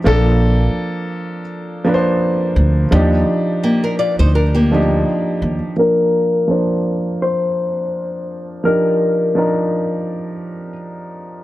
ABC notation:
X:1
M:4/4
L:1/16
Q:"Swing 16ths" 1/4=84
K:Bb
V:1 name="Hollow-body jazz guitar"
z16 | z16 | B8 c8 | B12- B2 z2 |]
V:2 name="Nylon-string guitar"
z16 | z4 [B,G] [DB] [Fd] [Ec] [DB] [B,G]6 z | z16 | z16 |]
V:3 name="Upright piano"
[F,B,DA]8 z2 [F,B,D_c=c]6 | [F,DEG]8 z2 [F,DEG]6 | [F,B,DB]4 [F,B,Dc]8 z4 | [F,DEG]4 [F,DEB]8 z4 |]
V:4 name="Upright bass" clef=bass
B,,,4 z8 z2 D,,2 | E,,2 z4 z D,,4- D,, z2 E,, z | z16 | z16 |]